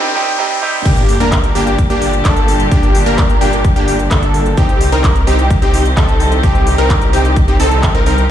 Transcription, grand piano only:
0.00 0.13 C3 loud
0.00 0.14 G3 medium
0.00 0.14 C4 medium
0.00 0.14 D#4 medium
0.00 0.14 G4 loud
0.15 0.37 C3 loud
0.15 0.37 G3 medium
0.15 0.37 C4 medium
0.15 0.37 D#4 loud
0.15 0.37 G4 loud
0.38 0.60 C3 loud
0.38 0.60 G3 loud
0.38 0.60 C4 medium
0.38 0.60 D#4 medium
0.38 0.61 G4 loud
0.61 0.83 C3 loud
0.61 0.83 G3 loud
0.61 0.83 C4 medium
0.61 0.84 D#4 loud
0.61 0.84 G4 loud

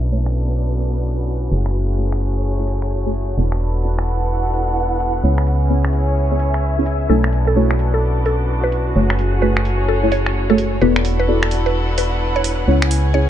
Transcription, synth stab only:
0.12 0.27 A3 medium
0.12 0.27 D4 medium
0.12 0.27 E4 medium
0.12 0.27 F#4 medium
0.12 0.27 C#5 loud
1.51 1.96 A3 medium
1.51 1.96 E4 medium
1.51 1.96 F#4 medium
1.51 1.96 G#4 medium
1.51 1.96 C#5 medium
1.98 2.07 A3 medium
1.98 2.07 E4 medium
1.98 2.07 F#4 medium
1.98 2.07 G#4 medium
1.98 2.07 C#5 medium
2.59 2.64 A3 medium
2.59 2.64 E4 medium
2.59 2.64 F#4 medium
2.59 2.64 G#4 medium
2.59 2.64 C#5 medium
3.05 3.11 A3 medium
3.05 3.11 E4 medium
3.05 3.11 F#4 medium
3.05 3.11 G#4 medium
3.05 3.11 C#5 medium
3.37 3.52 B3 medium
3.37 3.52 E4 medium
3.37 3.52 F#4 medium
3.37 3.52 A4 medium
3.37 3.52 D5 loud
3.84 3.99 B3 loud
3.84 3.99 E4 medium
3.84 3.99 F#4 medium
3.84 3.99 A4 medium
3.84 3.99 D5 loud
5.23 5.68 B3 medium
5.23 5.68 C#4 medium
5.23 5.68 E4 medium
5.23 5.68 G#4 medium
5.23 5.68 C#5 medium
5.70 5.79 B3 medium
5.70 5.79 C#4 medium
5.70 5.79 E4 medium
5.70 5.79 G#4 medium
5.70 5.79 C#5 medium
6.31 6.36 B3 medium
6.31 6.36 C#4 medium
6.31 6.36 E4 medium
6.31 6.36 G#4 medium
6.31 6.36 C#5 medium
6.78 6.83 B3 medium
6.78 6.83 C#4 medium
6.78 6.83 E4 medium
6.78 6.83 G#4 medium
6.78 6.83 E5 medium
7.09 7.24 A3 medium
7.09 7.24 D4 medium
7.09 7.24 E4 medium
7.09 7.24 F#4 medium
7.09 7.24 C#5 loud
7.56 7.71 A3 loud
7.56 7.71 D4 medium
7.56 7.71 E4 medium
7.56 7.71 F#4 medium
7.56 7.71 C#5 loud
8.95 9.40 A3 medium
8.95 9.40 E4 medium
8.95 9.40 F#4 medium
8.95 9.40 G#4 medium
8.95 9.40 C#5 medium
9.42 9.51 A3 medium
9.42 9.51 E4 medium
9.42 9.51 F#4 medium
9.42 9.51 G#4 medium
9.42 9.51 C#5 medium
10.03 10.09 A3 medium
10.03 10.09 E4 medium
10.03 10.09 F#4 medium
10.03 10.09 G#4 medium
10.03 10.09 C#5 medium
10.50 10.55 A3 medium
10.50 10.55 E4 medium
10.50 10.55 F#4 medium
10.50 10.55 G#4 medium
10.50 10.55 C#5 medium
10.81 10.96 B3 loud
10.81 10.96 E4 medium
10.81 10.96 F#4 medium
10.81 10.96 A4 medium
10.81 10.96 D5 loud
11.28 11.43 B3 loud
11.28 11.43 E4 medium
11.28 11.43 F#4 medium
11.28 11.43 A4 medium
11.28 11.43 D5 loud
12.67 13.12 B3 medium
12.67 13.12 C#4 medium
12.67 13.12 E4 medium
12.67 13.12 G#4 medium
12.67 13.12 C#5 medium
13.14 13.23 B3 medium
13.14 13.23 C#4 medium
13.14 13.23 E4 medium
13.14 13.23 G#4 medium
13.14 13.23 C#5 medium

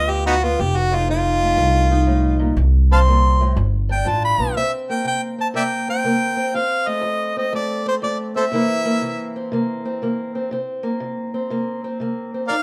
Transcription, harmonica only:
0.00 0.12 D#5 loud
0.11 0.26 G4 medium
0.26 0.35 B3 medium
0.26 0.35 D#4 medium
0.26 0.45 F#4 loud
0.44 0.62 F4 medium
0.61 0.78 G4 medium
0.77 0.96 F#4 medium
0.95 1.09 F4 medium
1.10 2.54 F4 loud
2.92 2.99 F5 medium
2.92 3.01 A5 medium
2.92 3.56 C6 medium
3.92 4.10 G5 medium
4.08 4.23 A5 medium
4.24 4.56 B5 loud
4.57 4.71 E5 medium
4.90 5.05 G5 medium
5.07 5.22 G5 medium
5.41 5.48 A5 medium
5.56 5.63 D5 medium
5.56 5.64 E5 medium
5.56 5.86 G5 medium
5.90 6.57 G5 loud
6.56 6.90 F5 medium
6.88 7.37 D#5 medium
7.38 7.53 D#5 medium
7.55 7.85 D5 medium
7.88 7.95 C5 medium
8.03 8.18 D5 medium
8.37 8.44 A4 medium
8.37 8.45 C5 medium
8.37 9.31 E5 medium
12.48 12.55 A#4 medium
12.48 12.55 D5 medium
12.48 12.63 F5 medium

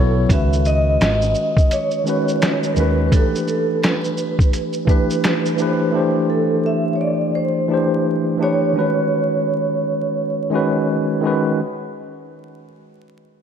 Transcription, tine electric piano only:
0.00 0.31 F#3 medium
0.00 0.30 B3 medium
0.00 0.31 E4 medium
0.00 0.31 A4 medium
0.00 0.31 C#5 medium
0.28 1.21 D#3 medium
0.28 1.22 G#3 medium
0.28 1.23 C#4 medium
0.32 1.23 F#4 medium
0.32 1.24 B4 medium
2.04 2.51 D#3 medium
2.04 2.52 G#3 medium
2.04 2.53 C#4 medium
2.08 2.53 F#4 medium
2.08 2.54 B4 medium
2.74 3.00 D#3 medium
2.74 3.01 G#3 medium
2.74 3.02 C#4 medium
2.79 3.03 F#4 medium
2.79 3.03 B4 medium
3.11 4.04 E3 medium
3.11 4.04 A3 medium
3.11 4.05 D4 medium
3.15 4.06 G4 medium
3.15 4.07 B4 medium
4.85 5.33 E3 medium
4.85 5.34 A3 medium
4.85 5.34 D4 medium
4.89 5.35 G4 medium
4.89 5.36 B4 medium
5.56 5.83 E3 medium
5.56 5.83 A3 medium
5.56 5.84 D4 medium
5.60 5.85 G4 medium
5.60 5.86 B4 medium
5.91 6.85 E3 medium
5.91 6.86 A3 medium
5.91 6.87 D4 medium
5.95 6.87 G4 medium
5.95 6.88 C5 medium
7.68 8.15 E3 medium
7.68 8.16 A3 medium
7.68 8.17 D4 medium
7.68 8.17 G4 medium
7.74 8.18 C5 medium
8.38 8.65 E3 medium
8.38 8.65 A3 medium
8.38 8.66 D4 medium
8.42 8.67 G4 medium
8.42 8.67 B4 medium
8.73 9.67 D#3 medium
8.73 9.68 G#3 medium
8.73 9.69 C#4 medium
8.77 9.69 F#4 medium
8.77 9.70 B4 medium
10.50 10.98 D#3 medium
10.50 10.98 G#3 medium
10.50 10.99 C#4 medium
10.54 11.00 F#4 medium
10.54 11.00 B4 medium
11.21 11.47 D#3 medium
11.21 11.48 G#3 medium
11.21 11.49 C#4 medium
11.25 11.50 F#4 medium
11.25 11.50 B4 medium

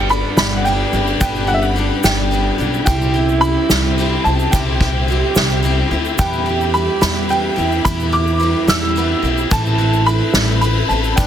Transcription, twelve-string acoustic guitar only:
0.00 0.10 D4 medium
0.09 0.37 G3 medium
0.09 0.38 B3 medium
0.09 0.37 D4 medium
0.09 0.37 G4 medium
0.38 0.66 G2 medium
0.38 0.66 D3 medium
0.38 0.64 G3 medium
0.38 0.65 B3 medium
0.38 0.65 D4 medium
0.38 0.65 G4 medium
0.65 0.93 G3 medium
0.65 0.93 B3 medium
0.65 0.93 D4 medium
0.65 0.92 G4 medium
0.93 1.20 G3 soft
0.93 1.20 B3 soft
0.93 1.21 D4 medium
0.93 1.21 G4 medium
1.20 1.48 G2 medium
1.20 1.48 D3 loud
1.20 1.48 G3 medium
1.20 1.49 B3 medium
1.20 1.48 D4 loud
1.20 1.46 G4 loud
1.47 1.75 G3 soft
1.47 1.76 B3 soft
1.47 1.76 D4 medium
1.47 1.75 G4 medium
1.76 2.04 G3 medium
1.76 2.04 B3 medium
1.76 2.03 D4 medium
1.76 2.02 G4 medium
2.04 2.32 G2 medium
2.04 2.32 D3 medium
2.04 2.30 G3 medium
2.04 2.31 B3 medium
2.04 2.32 D4 medium
2.04 2.31 G4 medium
2.31 2.59 G3 medium
2.31 2.59 B3 medium
2.31 2.58 D4 medium
2.31 2.57 G4 medium
2.58 2.85 G3 soft
2.58 2.87 B3 medium
2.58 2.87 D4 medium
2.58 2.86 G4 medium
2.86 3.14 C3 medium
2.86 3.14 G3 loud
2.86 3.15 C4 medium
2.86 3.14 E4 loud
2.86 3.13 G4 loud
3.14 3.41 C4 soft
3.14 3.43 E4 medium
3.14 3.42 G4 medium
3.42 3.70 G3 medium
3.42 3.70 C4 medium
3.42 3.70 E4 medium
3.42 3.69 G4 medium
3.70 3.99 C3 medium
3.70 3.97 G3 medium
3.70 3.98 C4 medium
3.70 3.98 E4 medium
3.70 3.98 G4 medium
3.98 4.25 G3 medium
3.98 4.26 C4 medium
3.98 4.26 E4 medium
3.98 4.24 G4 medium
4.25 4.53 C4 soft
4.25 4.53 E4 soft
4.25 4.53 G4 medium
4.53 4.81 C3 medium
4.53 4.81 G3 medium
4.53 4.81 C4 medium
4.53 4.81 E4 medium
4.53 4.80 G4 medium
4.81 5.09 C4 medium
4.81 5.09 E4 medium
4.81 5.08 G4 medium
5.08 5.36 G3 medium
5.08 5.37 C4 medium
5.08 5.36 E4 medium
5.08 5.35 G4 medium
5.36 5.65 C3 medium
5.36 5.61 G3 medium
5.36 5.63 C4 medium
5.36 5.64 E4 medium
5.36 5.64 G4 medium
5.63 5.91 G3 medium
5.63 5.91 C4 medium
5.63 5.91 E4 medium
5.63 5.90 G4 medium
5.91 6.19 C4 medium
5.91 6.19 E4 medium
5.91 6.19 G4 medium
6.19 6.46 E3 medium
6.19 6.47 G3 medium
6.19 6.47 B3 medium
6.19 6.46 E4 medium
6.19 6.45 G4 loud
6.46 6.74 B3 medium
6.46 6.75 E4 medium
6.46 6.74 G4 medium
6.74 7.01 G3 medium
6.74 7.01 B3 medium
6.74 7.00 E4 medium
6.74 7.00 G4 medium
7.01 7.30 E3 medium
7.01 7.28 G3 medium
7.01 7.29 B3 medium
7.01 7.29 E4 medium
7.01 7.29 G4 medium
7.29 7.57 G3 medium
7.29 7.58 B3 medium
7.29 7.57 E4 medium
7.29 7.55 G4 medium
7.56 7.85 B3 soft
7.56 7.85 E4 medium
7.56 7.84 G4 medium
7.85 8.13 E3 medium
7.85 8.13 G3 medium
7.85 8.13 B3 medium
7.85 8.13 E4 medium
7.85 8.11 G4 medium
8.12 8.39 B3 soft
8.12 8.41 E4 medium
8.12 8.40 G4 medium
8.40 8.68 G3 medium
8.40 8.68 B3 medium
8.40 8.67 E4 medium
8.40 8.66 G4 medium
8.68 8.97 E3 medium
8.68 8.95 G3 medium
8.68 8.96 B3 medium
8.68 8.96 E4 medium
8.68 8.95 G4 medium
8.96 9.23 G3 medium
8.96 9.24 B3 medium
8.96 9.23 E4 medium
8.96 9.21 G4 medium
9.22 9.52 B3 soft
9.22 9.51 E4 soft
9.22 9.51 G4 medium
9.51 9.79 A2 medium
9.51 9.79 E3 medium
9.51 9.79 A3 medium
9.51 9.79 C4 loud
9.51 9.78 E4 loud
9.51 9.77 B4 medium
9.78 10.05 A3 medium
9.78 10.07 C4 medium
9.78 10.07 E4 medium
9.78 10.06 B4 medium
10.06 10.34 A3 medium
10.06 10.34 C4 medium
10.06 10.34 E4 medium
10.06 10.33 B4 medium
10.35 10.63 A2 medium
10.35 10.63 E3 medium
10.35 10.60 A3 medium
10.35 10.61 C4 medium
10.35 10.62 E4 medium
10.35 10.62 B4 medium
10.62 10.89 A3 medium
10.62 10.90 C4 medium
10.62 10.90 E4 medium
10.62 10.88 B4 medium
10.89 11.18 A3 soft
10.89 11.18 C4 soft
10.89 11.18 E4 medium
10.89 11.17 B4 medium
11.17 11.27 G2 loud
11.17 11.27 D3 medium
11.17 11.27 G3 loud
11.17 11.27 B3 medium
11.17 11.27 D4 loud
11.17 11.27 B4 loud

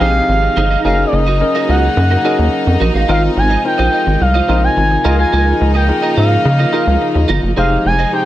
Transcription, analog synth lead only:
0.01 0.81 F5 loud
0.85 1.04 F5 loud
1.06 1.15 D5 medium
1.13 1.69 D#5 medium
1.69 2.77 F#5 medium
3.11 3.23 F5 loud
3.38 3.63 G#5 loud
3.66 4.23 G5 loud
4.22 4.63 F5 loud
4.64 5.16 G#5 loud
5.20 5.72 G#5 loud
5.76 6.15 G5 medium
6.18 7.25 F5 medium
7.58 7.84 F5 loud
7.86 8.12 G#5 loud
8.14 8.25 G5 loud

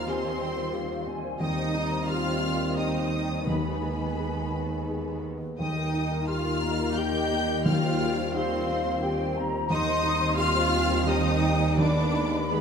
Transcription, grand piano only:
0.00 1.36 D#2 medium
0.00 1.43 F4 medium
0.00 0.23 C5 medium
0.07 0.34 G4 medium
0.23 0.50 C5 medium
0.40 0.67 C4 medium
0.56 0.83 C5 medium
0.72 1.00 G4 medium
0.90 1.17 C5 medium
1.07 1.34 C4 medium
1.24 1.40 C5 medium
1.40 3.43 D#2 medium
1.58 1.84 C5 medium
1.74 2.01 D#4 medium
1.91 2.19 C5 medium
2.09 2.36 G4 medium
2.26 2.53 C5 medium
2.43 2.70 C4 soft
2.60 2.87 C5 soft
2.77 3.05 G4 soft
2.94 3.23 C5 soft
3.12 3.40 C4 soft
3.30 3.47 C5 soft
3.49 5.56 D#2 medium
3.66 3.94 B4 soft
3.83 4.11 D#4 soft
4.01 4.28 B4 soft
4.18 4.46 G#4 soft
4.35 4.63 B4 soft
4.53 4.81 B3 soft
4.71 4.99 B4 soft
4.88 5.17 G#4 soft
5.07 5.35 B4 soft
5.24 5.52 B3 soft
5.42 5.59 B4 soft
5.59 7.61 D#2 medium
5.77 6.04 A#4 medium
5.94 6.21 D#4 medium
6.11 6.39 A#4 medium
6.28 6.56 G4 medium
6.45 6.73 A#4 medium
6.63 6.90 A#3 medium
6.80 7.07 A#4 medium
6.97 7.25 G4 medium
7.14 7.42 A#4 medium
7.31 7.59 A#3 medium
7.48 7.65 A#4 medium
7.66 9.66 D#2 medium
7.84 8.11 C5 medium
8.01 8.28 F4 medium
8.18 8.45 C5 medium
8.35 8.62 G4 medium
8.52 8.79 C5 medium
8.69 8.96 C4 medium
8.85 9.12 C5 medium
9.03 9.29 G4 medium
9.19 9.46 C5 medium
9.36 9.63 C4 medium
9.53 9.70 C5 medium
9.70 11.74 D#2 medium
9.87 10.14 C5 medium
10.04 10.31 D#4 medium
10.20 10.48 C5 medium
10.37 10.65 G4 medium
10.55 10.83 C5 medium
10.73 11.01 C4 medium
10.90 11.18 C5 medium
11.06 11.35 G4 medium
11.24 11.53 C5 medium
11.42 11.71 C4 medium
11.60 11.78 C5 medium
11.77 12.61 D#2 medium
11.96 12.25 B4 medium
12.14 12.43 D#4 medium
12.33 12.61 B4 medium
12.51 12.61 G#4 medium

